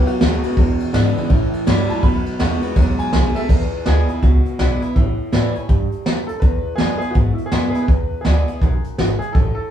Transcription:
Already playing: F#2 B2 F#3
0.02 F4
0.07 F#4, ride
0.20 D#2 B2 D#3 G#3 A3 B3 F#4, snare, ride
0.43 B2 G#3 B3 F#4, muted upright bass stroke, ride
0.57 E2 B2, kick, ride
0.80 muted upright bass stroke, ride
0.93 E2 G#2 C#3 D3 G#3 B3 E4, snare, ride
1.16 E2 C#3, muted upright bass stroke, ride
1.29 A2 E3, kick, ride
1.53 muted upright bass stroke, ride
1.66 G2 A2 E3 F#3 G3 C#4 E4, snare, ride
1.89 A2 F#3 A5, muted upright bass stroke, ride
2.03 F#2 B2 F#3 B5, kick, ride
2.26 muted upright bass stroke, ride
2.39 E2 B2 D#3 G#3 A3 B3 F#4 F#5, snare, ride
2.62 B2 G#3 B3 F#4, muted upright bass stroke, ride
2.76 D#2 G#2 B2 F#3, kick, ride
2.99 G#5, muted upright bass stroke, ride
3.13 B1 F#2 B2 G#3, snare, ride
3.35 B2 G#3 A4 E5, ride
3.49 E2 B4, kick, crash
3.73 muted upright bass stroke
3.86 D2 D3 G#3 B3 E4 G#4, snare, closed hi-hat
4.08 B3 E4, closed hi-hat
4.22 C#2 B2 F#4, kick, closed hi-hat
4.45 closed hi-hat
4.59 B1 D3 G#3 B3 E4, snare, closed hi-hat
4.82 B3 E4, closed hi-hat
4.95 A1 A2 E4, kick, closed hi-hat
5.19 muted upright bass stroke
5.32 A2 E3 G3 C#4 E4, snare, closed hi-hat
5.55 C#4 E4, muted upright bass stroke, closed hi-hat
5.69 G2, kick, closed hi-hat
5.92 muted upright bass stroke, closed hi-hat
6.06 F#2, snare, closed hi-hat
6.27 A4, muted upright bass stroke, closed hi-hat
6.40 E2 B4, kick, closed hi-hat
6.66 muted upright bass stroke
6.76 D3 G#3 B3 G#4, snare, closed hi-hat
6.80 F#2 E4
6.98 E4 G#4, closed hi-hat
7.03 B3, muted upright bass stroke
7.11 F#4
7.15 G#2 B2, kick, closed hi-hat
7.33 E4
7.38 muted upright bass stroke, closed hi-hat
7.46 G#4
7.52 F#2 D3 G#3 B3 E4, snare, closed hi-hat
7.70 G#4
7.75 B3 E4, muted upright bass stroke, closed hi-hat
7.82 B4
7.88 E2, kick, closed hi-hat
8.11 muted upright bass stroke
8.21 G#4, snare, closed hi-hat
8.25 D2 D3 G#3 B3 E4
8.48 B3 E4, closed hi-hat
8.61 B1 F#2, kick, closed hi-hat
8.84 muted upright bass stroke, closed hi-hat
8.98 G#1 G#2, snare, closed hi-hat
9.19 G#4, muted upright bass stroke, closed hi-hat
9.33 A1 A2 A4, kick, closed hi-hat
9.55 A4
9.59 muted upright bass stroke

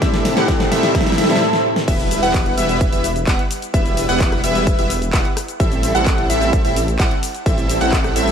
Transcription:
Already playing: C3 A3 C4 E4 G4, riser
0.00 A2 G3 A3 C4 E4 G4 A4 E5, kick, snare, closed hi-hat
0.14 snare, closed hi-hat
0.25 snare, open hi-hat
0.36 A2 G3 A3 C4 E4 G4 A4 F#5, snare, closed hi-hat
0.48 kick, snare, closed hi-hat
0.60 snare, closed hi-hat
0.71 G3 C4 E4 A4 E5, snare, open hi-hat
0.83 snare, closed hi-hat
0.95 kick, snare, closed hi-hat, swell
1.01 snare
1.06 G3 C4 E4 A4 E5, snare, open hi-hat
1.12 snare
1.18 G3 C4 E4 A4 E5, snare, open hi-hat
1.24 snare
1.29 A2 A3 C4 E4 A4, snare, closed hi-hat
1.36 snare
1.41 snare
1.53 snare
1.76 snare
1.88 E1 G3 B3 E4 B4 E5, kick, closed hi-hat, crash, impact, shaker
2.00 closed hi-hat, shaker
2.11 open hi-hat, shaker
2.23 E1 G3 B3 E4 B4 F#5, closed hi-hat, shaker
2.34 kick, clap, closed hi-hat, shaker
2.46 closed hi-hat
2.58 E1 G3 B3 E4 B4 E5, open hi-hat, shaker
2.69 closed hi-hat, shaker
2.81 kick, closed hi-hat, shaker
2.92 E1 G3 B3 E4 B4 E5, open hi-hat, shaker
3.04 open hi-hat, shaker
3.16 closed hi-hat, shaker
3.27 E1 G3 B3 E4 B4 F#5, kick, clap, closed hi-hat, shaker
3.39 closed hi-hat
3.51 open hi-hat, shaker
3.62 closed hi-hat, shaker
3.74 E1 G3 B3 E4 B4 E5, kick, closed hi-hat, shaker
3.86 closed hi-hat, shaker
3.97 open hi-hat, shaker
4.09 E1 G3 B3 E4 B4 F#5, closed hi-hat, shaker
4.20 kick, clap, closed hi-hat, shaker
4.32 cross-stick, closed hi-hat
4.44 E1 G3 B3 E4 B4 E5, open hi-hat, shaker
4.55 closed hi-hat, shaker
4.67 kick, closed hi-hat, shaker
4.79 E1 G3 B3 E4 B4 E5, open hi-hat, shaker
4.90 open hi-hat, shaker
5.02 closed hi-hat, shaker
5.13 E1 G3 B3 E4 B4 F#5, kick, clap, closed hi-hat, shaker
5.25 closed hi-hat
5.37 cross-stick, open hi-hat, shaker
5.48 closed hi-hat, shaker
5.60 A1 G3 C4 E4 A4 E5, kick, closed hi-hat, shaker
5.72 closed hi-hat, shaker
5.83 open hi-hat, shaker
5.95 A1 G3 C4 E4 A4 F#5, closed hi-hat, shaker
6.06 kick, clap, closed hi-hat, shaker
6.18 closed hi-hat
6.30 A1 G3 C4 E4 A4 E5, open hi-hat, shaker
6.41 closed hi-hat, shaker
6.53 kick, closed hi-hat, shaker
6.65 A1 G3 C4 E4 A4 E5, open hi-hat, shaker
6.76 open hi-hat, shaker
6.88 closed hi-hat, shaker
7.00 A1 G3 C4 E4 A4 F#5, kick, clap, closed hi-hat, shaker
7.11 closed hi-hat
7.23 open hi-hat, shaker
7.35 closed hi-hat, shaker
7.46 A1 G3 C4 E4 A4 E5, kick, closed hi-hat, shaker
7.58 closed hi-hat, shaker
7.69 open hi-hat, shaker
7.81 A1 G3 C4 E4 A4 F#5, closed hi-hat, shaker
7.93 kick, clap, closed hi-hat, shaker
8.04 cross-stick, closed hi-hat, shaker
8.16 A1 G3 C4 E4 A4 E5, open hi-hat, shaker
8.28 closed hi-hat, shaker

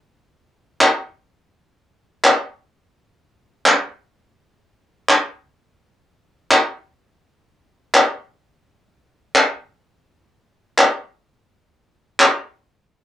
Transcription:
0.81 clap
2.24 clap
3.66 clap
5.09 clap
6.51 clap
7.95 clap
9.36 clap
10.78 clap
12.20 clap

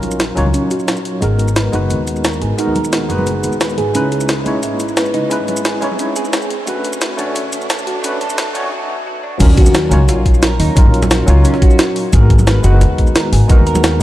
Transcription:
Already playing: A#1 F#3 C#4 D#4 F4 A#4 C#5, riser
0.03 closed hi-hat, high conga, shaker
0.12 shaker
0.20 F#4, snare, closed hi-hat, shaker
0.35 C#2 F#3 C#4 D#4 F4 C#5, closed hi-hat, shaker
0.46 high conga
0.54 C#4, closed hi-hat, shaker
0.71 F#4, closed hi-hat, shaker
0.80 shaker
0.88 snare, closed hi-hat, shaker
0.97 shaker
1.05 closed hi-hat
1.21 G#1 G#3 B3 D#4 F#4 G#4 A#4, closed hi-hat, shaker
1.39 closed hi-hat, shaker
1.48 shaker
1.56 B4, snare, closed hi-hat, shaker
1.72 F#1 G#3 B3 D#4 F#4 B4, closed hi-hat, shaker
1.90 D#2, closed hi-hat, shaker
2.08 closed hi-hat, shaker
2.16 shaker
2.25 A#4, snare, closed hi-hat, shaker
2.33 shaker
2.41 G#1 G#4, closed hi-hat
2.57 G#3 B3 D#4 F#4 A#4, closed hi-hat, shaker
2.67 D#2
2.75 A#4, closed hi-hat, high conga, shaker
2.85 shaker
2.93 snare, closed hi-hat, shaker
3.08 F#1 G#3 B3 D#4 F#4 B4, closed hi-hat, shaker
3.18 high conga
3.27 G#4, closed hi-hat, shaker
3.43 D#2, closed hi-hat, shaker
3.53 shaker
3.61 B4, snare, closed hi-hat, shaker
3.70 shaker
3.78 G#1 G#4, closed hi-hat
3.93 C#2 G#3 C#4 D#4 E4 B4, closed hi-hat, shaker
4.12 G#4, closed hi-hat, shaker
4.21 shaker
4.29 snare, closed hi-hat, shaker
4.44 B1 G#3 C#4 D#4 E4 C#5, closed hi-hat, shaker
4.63 G#1 E4, closed hi-hat, shaker
4.80 closed hi-hat, shaker
4.89 shaker
4.97 B4, snare, closed hi-hat, shaker
5.06 shaker
5.14 C#2 D#4, closed hi-hat
5.29 G#3 C#4 D#4 E4 B4, closed hi-hat, shaker
5.40 G#1
5.48 closed hi-hat, high conga, shaker
5.57 shaker
5.65 G#4, snare, closed hi-hat, shaker
5.81 B1 G#3 C#4 D#4 E4 C#5, closed hi-hat, shaker
5.91 high conga
5.99 C#4, closed hi-hat, shaker
6.16 G#4, closed hi-hat, shaker
6.25 shaker
6.33 snare, closed hi-hat, shaker
6.42 shaker
6.50 closed hi-hat
6.66 B1 A3 C#4 D4 F#4 B4, closed hi-hat, shaker
6.85 closed hi-hat, shaker
6.93 shaker
7.02 B4, snare, closed hi-hat, shaker
7.17 A1 A3 C#4 D4 F#4 C#5, closed hi-hat, shaker
7.36 F#1, closed hi-hat, shaker
7.53 closed hi-hat, shaker
7.62 shaker
7.70 A4, snare, closed hi-hat, shaker
7.79 shaker
7.87 B1 F#4, closed hi-hat
8.02 A3 C#4 D4 F#4 B4, closed hi-hat, shaker
8.13 F#1
8.21 A4, closed hi-hat, high conga, shaker
8.30 shaker
8.38 snare, closed hi-hat, shaker
8.53 A1 A3 C#4 D4 F#4 C#5, closed hi-hat, shaker
8.63 high conga
8.72 F#4
9.06 F#4
9.23 D4
9.39 D#2 F#3 C#4 D#4 F4 A#4, kick, closed hi-hat, crash, high conga, shaker
9.57 F#4, kick, closed hi-hat
9.66 high conga, shaker
9.75 snare, closed hi-hat, shaker
9.90 C#2 F#3 C#4 D#4 F4 C#5, closed hi-hat, shaker
10.08 A#1 F4, snare, closed hi-hat, shaker
10.26 kick, closed hi-hat
10.34 shaker
10.43 A#4, snare, closed hi-hat, shaker
10.60 D#2 D#4, open hi-hat
10.75 F#3 C#4 D#4 F4 A#4, kick, closed hi-hat, high conga, shaker
10.85 A#1
10.94 closed hi-hat
11.02 snare, high conga, shaker
11.11 F#4, snare, closed hi-hat, shaker
11.26 C#2 F#3 C#4 D#4 F4 C#5, closed hi-hat, shaker
11.45 C#4, closed hi-hat, shaker
11.54 snare
11.62 F#4, kick, closed hi-hat
11.71 shaker
11.79 snare, closed hi-hat, shaker
11.96 open hi-hat
12.12 G#1 G#3 B3 D#4 F#4 G#4 A#4, kick, closed hi-hat, high conga, shaker
12.30 kick, closed hi-hat
12.39 high conga, shaker
12.47 B4, snare, closed hi-hat, shaker
12.63 F#1 G#3 B3 D#4 F#4 B4, closed hi-hat, shaker
12.81 D#2, snare, closed hi-hat, shaker
12.98 kick, closed hi-hat
13.07 shaker
13.15 A#4, snare, closed hi-hat, shaker
13.32 G#1 G#4, open hi-hat
13.48 G#3 B3 D#4 F#4 A#4, kick, closed hi-hat, high conga, shaker
13.58 D#2
13.67 A#4, closed hi-hat, shaker
13.75 snare, high conga, shaker
13.84 snare, closed hi-hat, shaker
13.99 G#3

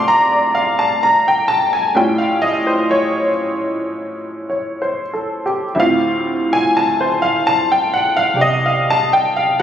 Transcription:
Already playing: G2 G3 A3 A#3 C4 D4 F4 G4 D5 F5 A5 C6 D6
0.08 A#5
0.32 D5
0.55 F5
0.79 A5
1.03 A#5
1.28 G5
1.48 A5
1.73 G#5
1.95 A2 G3 A3 C#4 F4 G5
2.18 F5
2.42 D#5
2.67 C5
2.91 C#5
4.50 C#5
4.82 C5
5.13 A4
5.46 G4
5.75 D2 A2 E5
5.79 C4 F4 F5
6.53 G#5
6.77 A5
7.01 C5
7.22 F5
7.47 A5
7.72 G5
7.94 F#5
8.17 F5
8.34 C3 D4 G4
8.41 D#5
8.66 F5
8.90 A5
9.13 G5
9.37 F5

